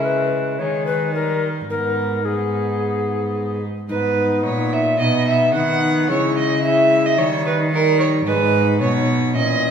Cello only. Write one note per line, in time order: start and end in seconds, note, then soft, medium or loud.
0.00 0.62 C#3 medium
0.60 1.68 D#3 medium
1.69 3.66 G#2 medium
3.90 4.41 G#2 medium
4.45 5.01 A#2 medium
5.00 5.55 B2 medium
5.54 6.10 D#3 medium
6.09 7.18 C#3 medium
7.17 8.25 D#3 medium
8.25 8.82 G#2 medium
8.80 9.36 B2 medium
9.35 9.71 A#2 medium